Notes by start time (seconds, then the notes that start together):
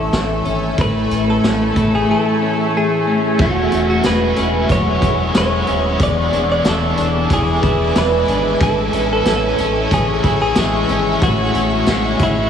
Already playing: E3 G#3 A3 C#4 E4 A4 E5 G#5 C#6
0.12 A1, snare, closed hi-hat
0.44 G#1 C#4, closed hi-hat
0.78 A1 A2 E4 B4, kick, closed hi-hat
1.10 A1, closed hi-hat
1.30 A4
1.43 A1 C#4, snare, closed hi-hat
1.76 A1 E4, kick, closed hi-hat
1.95 G#4
2.09 E3 A4
2.42 C#4
2.77 G#4
3.07 C#4
3.38 E1 E2 B2 F#3 G#3 C#4 E4 F#4 G#4 E5 F#5 C#6, kick, crash
3.70 E1 G#3 C#4 E4, closed hi-hat
3.75 F#3
3.90 F#4
4.03 E1 F#3 G#3 C#4 B4, snare, closed hi-hat, tambourine
4.08 E4
4.36 E1 G#3 C#4 E4, closed hi-hat
4.41 F#3
4.69 E1 E2 B2 F#3 G#3 C#4 E4 C#5, kick, closed hi-hat
5.01 E1 G#3 C#4 E4, kick, closed hi-hat
5.06 F#3
5.34 E1 F#3 G#3 C#4, snare, closed hi-hat, tambourine
5.38 E4 C#5
5.66 D#1 G#3 C#4 E4, closed hi-hat
5.71 F#3
5.99 E1 E2 B2 E3 G#3 D4 E4 B4 G#5 D6, kick, closed hi-hat
6.03 D5
6.31 E1 G#3 D4 E4, closed hi-hat
6.36 E3
6.52 D5
6.63 E1 E3 D4, snare, closed hi-hat, tambourine
6.68 E4 A4
6.95 E1 D4 E4, closed hi-hat
7.00 E3
7.28 E1 E2 B2 E3 G#3 D4 E4, kick, closed hi-hat
7.34 G#4
7.61 E1 G#3 D4 E4, kick, closed hi-hat
7.66 E3
7.94 E1 E3 G#3 D4, snare, closed hi-hat, tambourine
7.98 E4 B4
8.26 G#1 G#3 D4 E4, closed hi-hat
8.31 E3
8.59 A1 A2 E3 C#4 E4 A4 C#5 E5 C#6, kick, closed hi-hat
8.91 A1 C#4 E4, closed hi-hat
8.96 G#3
9.13 A4
9.24 A1 E3 C#4, snare, closed hi-hat, tambourine
9.28 E4 A4
9.56 A1 C#4 E4, closed hi-hat
9.90 A1 A2 E3 G#3 C#4 E4 G#4, kick, closed hi-hat
10.22 A1 C#4 E4, kick, closed hi-hat
10.28 G#3
10.42 G#4
10.55 A1 E3 G#3 C#4 G#4, snare, closed hi-hat, tambourine
10.60 E4
10.88 G#1 C#4 E4, closed hi-hat
10.93 G#3
11.20 A1 A2 E3 G#3 C#4 E4 F#4 F#5, kick, closed hi-hat
11.53 A1 C#4 E4, closed hi-hat
11.58 G#3
11.85 A1 E3 G#3 C#4, snare, closed hi-hat, tambourine
11.90 E4
12.18 A1 C#4 E4, kick, closed hi-hat
12.22 G#3 E4